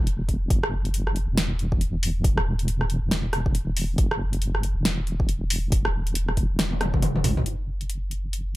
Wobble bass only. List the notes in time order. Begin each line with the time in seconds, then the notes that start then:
Already playing: E1
0.50 F#1
1.29 E1
3.03 E1
3.98 F#1
4.76 E1
6.50 E1
7.24 C#2
7.46 F#1